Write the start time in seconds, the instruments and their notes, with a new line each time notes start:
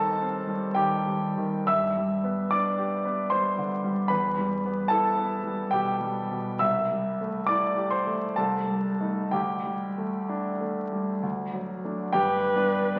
Already playing: grand piano D#2 G3 C4 D#4 A4 A#4 A5 A#5
0.21 grand piano C4
0.47 grand piano G3
0.74 grand piano D#3 G4 G5
1.07 grand piano G3
1.37 grand piano D#3
1.67 grand piano G2 E5 E6
1.97 grand piano G3
2.24 grand piano B3
2.51 grand piano D4 D5 D6
2.78 grand piano G4
3.05 grand piano B3
3.30 grand piano G3 C5 C6
3.58 grand piano D3
3.84 grand piano G3
4.08 grand piano E2 B4 B5
4.38 grand piano G3
4.65 grand piano B3
4.88 grand piano E4 A4 A5
5.17 grand piano B3
5.44 grand piano G3
5.71 grand piano B2 G4 G5
6.01 grand piano G3
6.31 grand piano B2
6.59 grand piano C2 E5 E6
6.91 grand piano G3
7.21 grand piano A3
7.46 grand piano E4 D5 D6
7.77 grand piano G4
7.91 grand piano C5 C6
8.07 grand piano A3
8.36 grand piano C2 A4 A5
8.67 grand piano G3
9.00 grand piano A3 D#4
9.31 grand piano D2 G4 G5
9.65 grand piano G3
9.98 grand piano A3
10.29 grand piano D4
10.61 grand piano A3
10.93 grand piano G3
11.23 grand piano D2
11.53 grand piano F#3
11.84 grand piano A3 D4
12.13 grand piano G1 G2 G4 G5, viola B4
12.55 grand piano G3 B3 D4
12.96 grand piano G3 B3